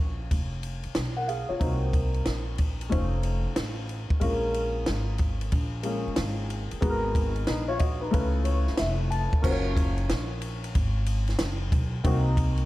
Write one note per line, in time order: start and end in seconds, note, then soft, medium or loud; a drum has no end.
0.00 0.27 A#1 medium
0.00 1.56 A#3 medium
0.00 1.56 C#4 medium
0.00 0.91 F4 medium
0.00 0.91 F#4 medium
0.00 0.92 C#5 medium
0.31 0.82 F1 medium
0.31 kick medium
0.31 ride medium
0.63 ride medium
0.83 muted upright bass stroke soft
0.83 ride soft
0.95 1.47 B1 medium
0.95 snare loud
0.95 hi-hat pedal medium
0.95 ride medium
1.17 1.28 A#4 soft
1.17 1.27 F#5 medium
1.28 1.49 G#4 medium
1.28 1.48 F5 medium
1.28 ride soft
1.49 1.81 F4 soft
1.49 1.80 C#5 medium
1.49 muted upright bass stroke soft
1.59 2.23 C2 medium
1.59 2.88 A#3 medium
1.59 2.88 C4 medium
1.59 2.88 D#4 medium
1.59 2.89 F#4 medium
1.59 2.89 C5 medium
1.59 kick medium
1.59 ride medium
1.93 kick medium
1.93 ride medium
2.14 ride soft
2.25 2.88 A#1 medium
2.25 snare medium
2.25 hi-hat pedal soft
2.25 ride medium
2.58 kick medium
2.58 ride medium
2.81 ride soft
2.89 3.43 F1 medium
2.89 4.18 A3 medium
2.89 4.18 C#4 medium
2.89 4.19 D#4 medium
2.89 4.19 F4 medium
2.89 4.19 C5 medium
2.89 kick medium
2.89 ride medium
3.23 ride medium
3.46 muted upright bass stroke soft
3.56 4.08 A1 medium
3.56 snare loud
3.56 hi-hat pedal medium
3.56 ride medium
3.89 ride soft
4.10 muted upright bass stroke soft
4.10 kick medium
4.20 4.84 A#1 medium
4.20 5.81 G#3 medium
4.20 5.81 A#3 medium
4.20 5.81 C#4 medium
4.20 5.81 F4 medium
4.20 5.82 A#4 medium
4.20 kick loud
4.20 ride medium
4.54 ride medium
4.86 5.49 G#1 medium
4.86 snare loud
4.86 hi-hat pedal medium
4.86 ride medium
5.18 kick medium
5.18 ride medium
5.41 ride soft
5.52 6.04 A#1 medium
5.52 kick medium
5.52 ride medium
5.83 6.79 G#3 medium
5.83 6.82 A#3 soft
5.83 6.82 C#4 medium
5.83 6.82 F4 soft
5.83 6.82 G#4 medium
5.83 ride medium
6.07 muted upright bass stroke soft
6.16 6.69 G#1 medium
6.16 snare loud
6.16 hi-hat pedal medium
6.16 ride medium
6.50 ride soft
6.71 muted upright bass stroke soft
6.71 ride soft
6.81 7.44 G#1 medium
6.81 8.09 G#3 medium
6.81 8.10 B3 medium
6.81 7.46 D#4 medium
6.81 7.46 F#4 medium
6.81 6.91 G#4 medium
6.81 kick loud
6.81 ride medium
6.90 7.50 A#4 medium
7.15 kick medium
7.15 ride medium
7.36 ride soft
7.47 8.10 A#1 medium
7.47 7.68 D#4 medium
7.47 7.68 B4 medium
7.47 snare medium
7.47 hi-hat pedal soft
7.47 ride medium
7.68 7.80 F4 medium
7.68 7.79 C#5 medium
7.79 8.00 F#4 soft
7.79 8.00 D#5 medium
7.79 kick medium
7.79 ride medium
8.01 8.33 D#4 medium
8.01 8.12 B4 medium
8.11 8.65 C#2 loud
8.11 9.40 A3 medium
8.11 9.40 C#4 medium
8.11 9.41 E4 medium
8.11 9.41 F4 medium
8.11 9.41 B4 medium
8.11 kick medium
8.11 ride medium
8.45 8.75 C#5 medium
8.45 ride medium
8.67 muted upright bass stroke soft
8.67 snare soft
8.77 9.30 F1 medium
8.77 9.08 E5 medium
8.77 snare loud
8.77 hi-hat pedal medium
8.77 ride medium
9.11 9.41 A5 medium
9.11 ride soft
9.33 muted upright bass stroke soft
9.33 kick medium
9.42 10.06 F#1 loud
9.42 11.99 A#3 medium
9.42 12.00 C#4 medium
9.42 12.00 F4 medium
9.42 12.00 F#4 medium
9.42 9.52 C5 medium
9.42 kick loud
9.42 crash medium
9.51 12.04 C#5 medium
9.77 kick medium
9.77 ride medium
9.97 ride soft
10.09 10.71 A#1 medium
10.09 snare loud
10.09 hi-hat pedal soft
10.09 ride medium
10.41 ride medium
10.64 ride soft
10.75 11.37 G#1 medium
10.75 kick medium
10.75 ride medium
11.06 ride medium
11.27 snare soft
11.27 ride soft
11.38 11.71 F#1 medium
11.38 snare loud
11.38 hi-hat pedal medium
11.38 ride medium
11.72 12.03 B1 medium
11.72 kick medium
11.72 ride medium
12.04 12.65 C2 loud
12.04 12.65 A#3 medium
12.04 12.65 C4 medium
12.04 12.65 D#4 medium
12.04 12.65 F#4 medium
12.04 12.65 C5 medium
12.04 kick loud
12.04 ride medium
12.37 kick medium
12.37 ride medium
12.57 ride soft